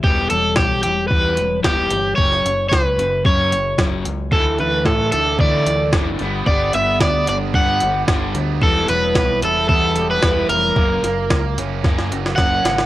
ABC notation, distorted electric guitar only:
X:1
M:4/4
L:1/8
Q:1/4=112
K:Edor
V:1 name="Distorted electric guitar"
z8 | z8 | E, A, E, D A, A D B, | B, B, B, D B, G D B, |
E, B, E, E B, G E E, | ^A, A, A, C A, F C A, |]